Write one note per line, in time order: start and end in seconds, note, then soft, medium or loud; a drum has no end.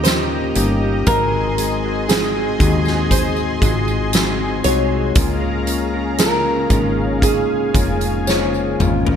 0.00 0.52 D#2 medium
0.00 0.05 A#3 loud
0.00 0.06 C#4 loud
0.00 0.06 D#4 loud
0.00 1.09 F4 medium
0.00 0.06 G4 loud
0.00 0.14 G4 medium
0.00 1.04 G4 medium
0.00 1.07 C5 medium
0.00 5.12 D#5 medium
0.00 1.03 A#5 medium
0.04 0.56 A#2 medium
0.04 0.57 D#3 medium
0.04 0.53 A#3 medium
0.04 0.56 A#3 medium
0.04 0.54 C#4 medium
0.04 0.57 C#4 medium
0.04 0.54 D#4 medium
0.04 0.54 G4 medium
0.04 0.57 G4 medium
0.04 0.57 A#4 medium
0.04 snare medium
0.04 closed hi-hat medium
0.04 tambourine medium
0.55 1.04 G1 medium
0.55 1.04 A#3 loud
0.55 0.82 A#3 medium
0.55 1.04 C#4 medium
0.55 0.82 C#4 medium
0.55 1.04 D#4 medium
0.55 1.05 G4 loud
0.55 0.82 G4 medium
0.55 closed hi-hat medium
0.55 tambourine medium
0.60 0.81 A#4 medium
0.82 1.08 A#3 soft
0.82 1.08 C#4 medium
0.82 1.08 G4 medium
0.82 1.08 A#4 medium
1.06 2.56 G#1 loud
1.06 2.56 G#2 medium
1.06 1.33 G#2 medium
1.06 1.33 D#3 medium
1.06 1.33 F#3 medium
1.06 1.55 G#3 medium
1.06 1.56 C4 medium
1.06 1.34 C4 medium
1.06 1.56 D#4 medium
1.06 1.56 F#4 medium
1.06 1.33 F#4 medium
1.06 5.12 G#4 medium
1.06 1.32 G#4 medium
1.06 2.09 A#4 loud
1.06 5.12 G#5 medium
1.06 5.12 C6 medium
1.06 kick loud
1.06 closed hi-hat medium
1.06 tambourine soft
1.33 1.86 F#3 soft
1.33 1.85 C4 soft
1.33 1.84 F#4 soft
1.33 1.83 G#4 soft
1.58 2.07 G#3 medium
1.58 2.07 C4 medium
1.58 2.07 D#4 medium
1.58 2.07 G#4 medium
1.58 closed hi-hat medium
1.58 tambourine soft
1.84 2.09 F#3 soft
1.84 2.10 C4 medium
1.84 2.10 F#4 medium
1.84 2.10 G#4 medium
2.09 2.35 G#2 medium
2.09 2.35 D#3 medium
2.09 2.35 F#3 medium
2.09 2.57 G#3 medium
2.09 2.58 C4 medium
2.09 2.36 C4 medium
2.09 2.58 D#4 medium
2.09 2.58 F#4 medium
2.09 2.35 F#4 medium
2.09 3.11 G#4 medium
2.09 2.34 G#4 medium
2.09 snare loud
2.09 closed hi-hat loud
2.09 tambourine medium
2.35 2.59 F#3 soft
2.35 2.60 C4 soft
2.35 2.61 F#4 medium
2.35 2.60 G#4 medium
2.59 3.58 D#2 medium
2.59 3.62 F#3 medium
2.59 3.08 G#3 medium
2.59 3.09 C4 medium
2.59 3.63 C4 medium
2.59 3.09 D#4 medium
2.59 3.09 F#4 loud
2.59 3.64 F#4 medium
2.59 kick medium
2.59 closed hi-hat medium
2.59 tambourine medium
2.63 3.66 G#4 medium
2.85 snare soft
2.85 tambourine soft
3.11 3.60 G#3 medium
3.11 3.60 C4 medium
3.11 3.61 D#4 medium
3.11 3.61 F#4 medium
3.11 4.64 C5 loud
3.11 kick medium
3.11 closed hi-hat medium
3.11 tambourine medium
3.36 tambourine soft
3.62 4.60 G#1 medium
3.62 4.13 F#3 medium
3.62 4.11 G#3 medium
3.62 4.11 C4 medium
3.62 4.13 C4 medium
3.62 4.12 D#4 medium
3.62 4.12 F4 medium
3.62 4.14 F#4 medium
3.62 kick medium
3.62 closed hi-hat medium
3.62 tambourine soft
3.66 4.15 G#4 medium
3.88 tambourine soft
4.13 4.65 G#2 medium
4.13 4.65 D#3 medium
4.13 4.65 F#3 medium
4.13 4.62 G#3 medium
4.13 4.62 C4 medium
4.13 4.65 C4 medium
4.13 4.63 D#4 medium
4.13 4.63 F#4 medium
4.13 4.66 F#4 medium
4.13 4.66 G#4 medium
4.13 snare medium
4.13 closed hi-hat medium
4.13 tambourine medium
4.64 5.13 C2 medium
4.64 5.14 C3 medium
4.64 4.91 F#3 medium
4.64 5.14 G#3 loud
4.64 4.92 C4 medium
4.64 5.14 D#4 medium
4.64 5.14 F#4 loud
4.64 4.91 F#4 medium
4.64 6.19 C#5 loud
4.64 closed hi-hat medium
4.64 tambourine soft
4.68 4.90 G#4 medium
4.91 5.17 F#3 soft
4.91 5.18 C4 medium
4.91 5.17 F#4 medium
4.91 5.16 G#4 medium
5.15 6.66 C#2 loud
5.15 6.66 C#3 medium
5.15 5.42 C#3 medium
5.15 5.65 G#3 medium
5.15 5.43 G#3 medium
5.15 5.65 A#3 medium
5.15 9.16 C#4 medium
5.15 5.65 C#4 medium
5.15 5.43 C#4 medium
5.15 5.66 F4 loud
5.15 5.42 F4 medium
5.15 9.16 G#4 medium
5.15 5.41 A#4 medium
5.15 9.16 F5 medium
5.15 7.21 A#5 medium
5.15 kick loud
5.15 closed hi-hat medium
5.15 tambourine soft
5.42 5.95 C#4 soft
5.42 5.94 F4 soft
5.42 5.93 A#4 medium
5.67 6.16 G#3 medium
5.67 6.16 A#3 medium
5.67 6.17 C#4 medium
5.67 6.17 F4 medium
5.67 closed hi-hat medium
5.67 tambourine soft
5.94 6.19 C#4 soft
5.94 6.19 F4 medium
5.94 6.19 A#4 soft
6.18 6.45 C#3 medium
6.18 6.67 G#3 medium
6.18 6.45 G#3 medium
6.18 6.68 A#3 medium
6.18 6.68 C#4 medium
6.18 6.45 C#4 medium
6.18 6.68 F4 medium
6.18 6.45 F4 medium
6.18 7.26 A#4 medium
6.18 6.43 A#4 medium
6.18 snare loud
6.18 closed hi-hat medium
6.18 tambourine medium
6.45 6.70 C#4 soft
6.45 6.71 F4 soft
6.45 6.70 A#4 soft
6.70 7.44 G#1 medium
6.70 7.73 G#3 medium
6.70 7.20 G#3 medium
6.70 7.20 A#3 medium
6.70 7.74 C#4 medium
6.70 7.20 C#4 medium
6.70 7.20 D#4 loud
6.70 7.75 F4 medium
6.70 7.76 A#4 medium
6.70 kick loud
6.70 closed hi-hat medium
6.70 tambourine soft
7.22 7.72 G#3 medium
7.22 7.72 A#3 medium
7.22 7.73 C#4 medium
7.22 7.73 D#4 medium
7.22 8.31 G#4 medium
7.22 9.16 G#5 medium
7.22 kick medium
7.22 closed hi-hat medium
7.22 tambourine medium
7.74 8.76 F1 medium
7.74 8.27 G#3 medium
7.74 8.24 G#3 medium
7.74 8.25 A#3 medium
7.74 8.27 C#4 medium
7.74 8.25 C#4 medium
7.74 8.25 F4 medium
7.74 8.28 F4 medium
7.74 8.28 A#4 medium
7.74 kick medium
7.74 closed hi-hat medium
7.74 tambourine soft
8.01 closed hi-hat soft
8.01 tambourine soft
8.27 8.80 C#3 medium
8.27 8.77 G#3 medium
8.27 8.78 G#3 medium
8.27 8.78 A#3 medium
8.27 8.78 C#4 medium
8.27 8.80 F4 medium
8.27 8.79 F4 medium
8.27 8.80 A#4 medium
8.27 9.16 C5 medium
8.27 9.02 C#5 medium
8.27 snare medium
8.27 tambourine medium
8.54 tambourine soft
8.78 9.16 G#1 medium
8.78 9.05 G#3 medium
8.78 9.16 G#3 medium
8.78 9.16 A#3 medium
8.78 9.06 C#4 medium
8.78 9.16 C#4 medium
8.78 9.06 F4 medium
8.78 9.16 F4 loud
8.78 9.04 A#4 medium
8.78 mid tom medium
8.78 tambourine medium
9.05 9.16 C#4 soft
9.05 9.16 F4 soft
9.05 9.16 A#4 medium
9.05 floor tom medium